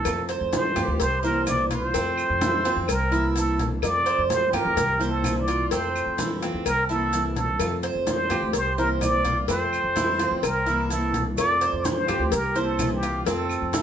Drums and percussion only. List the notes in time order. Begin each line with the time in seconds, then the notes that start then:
0.05 cowbell, high conga, claves, maracas
0.29 cowbell, high conga, maracas
0.53 cowbell, high conga, maracas
0.76 cowbell, high conga, low conga, claves, maracas
1.00 cowbell, high conga, maracas
1.24 high conga, maracas
1.47 cowbell, high conga, claves, maracas
1.71 cowbell, high conga, maracas
1.94 cowbell, high conga, maracas
2.18 high conga, claves, maracas
2.41 cowbell, high conga, maracas
2.65 cowbell, high conga, maracas
2.88 cowbell, high conga, claves, maracas
3.14 maracas
3.36 cowbell, high conga, maracas
3.59 cowbell, high conga, maracas
3.82 cowbell, high conga, claves, maracas
4.07 cowbell, high conga, maracas
4.30 cowbell, high conga, maracas
4.54 cowbell, high conga, low conga, claves, maracas
4.77 cowbell, high conga, low conga, maracas
5.00 high conga, maracas
5.24 cowbell, high conga, claves, maracas
5.48 cowbell, maracas
5.71 cowbell, maracas
5.95 high conga, claves, maracas
6.18 cowbell, high conga, maracas
6.43 cowbell, high conga, maracas
6.66 cowbell, high conga, claves, maracas
6.90 maracas
7.13 cowbell, maracas
7.36 cowbell, high conga, maracas
7.60 cowbell, high conga, claves, maracas
7.83 cowbell, high conga, maracas
8.07 cowbell, high conga, maracas
8.30 cowbell, high conga, low conga, claves, maracas
8.53 cowbell, high conga, maracas
8.78 maracas
9.01 cowbell, high conga, claves, maracas
9.25 cowbell, high conga, maracas
9.48 cowbell, high conga, maracas
9.73 high conga, claves, maracas
9.96 cowbell, high conga, maracas
10.20 cowbell, high conga, maracas
10.43 cowbell, high conga, claves, maracas
10.68 high conga, maracas
10.90 cowbell, high conga, maracas
11.14 cowbell, high conga, maracas
11.38 cowbell, high conga, claves, maracas
11.61 cowbell, high conga, maracas
11.85 cowbell, high conga, maracas
12.08 cowbell, high conga, low conga, claves, maracas
12.32 cowbell, high conga, maracas
12.55 high conga, maracas
12.79 cowbell, high conga, claves, maracas
13.03 cowbell, maracas
13.26 cowbell, high conga, maracas
13.49 high conga, claves, maracas
13.73 cowbell, high conga, maracas